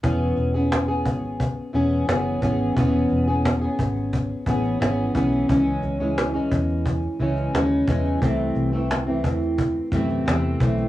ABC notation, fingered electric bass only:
X:1
M:4/4
L:1/8
Q:1/4=88
K:E
V:1 name="Fingered electric bass" clef=bass
E,,, E,,,2 G,,,2 E,,, F,,, G,,, | E,,, E,,,2 G,,,2 A,,, G,,, B,,, | C,, C,,2 E,,2 C,, D,, E,, | =C,, C,,2 E,,2 F,, E,, B,,, |]